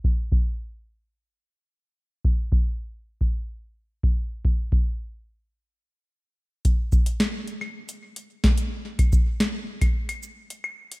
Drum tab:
HH |----------------|----------------|----------------|x--x--x--x-x--x-|
SH |----------------|----------------|----------------|--x------x------|
CL |----------------|----------------|----------------|-------x--------|
SD |----------------|----------------|----------------|----o--------o--|
BD |o-o-------------|o-o----o-----o--|o-o-------------|o-o----------o--|

HH |-x--x--x-x--x--x|
SH |--x-------x-----|
CL |-x-----x-x---x--|
SD |----o-----------|
BD |-oo----o--------|